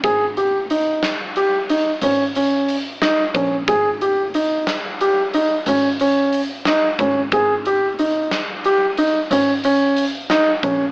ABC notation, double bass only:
X:1
M:11/8
L:1/8
Q:1/4=91
K:Cphr
V:1 name="Double bass" clef=bass
A,,,6 A,,,4 B,,, | A,,,6 A,,,4 A,,, | A,,,6 A,,,4 B,,, |]